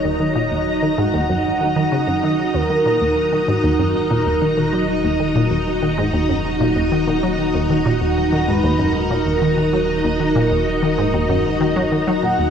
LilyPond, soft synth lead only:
\new Staff \with { instrumentName = "Soft synth lead" } { \time 4/4 \key ees \minor \tempo 4 = 96 ees''4. ges''2 ees''8 | bes'4. ges'8 bes'4. ees''8~ | ees''2.~ ees''8 r8 | r8 ges'4 ces''8 bes'4. bes'8~ |
bes'2. r8 ges''8 | }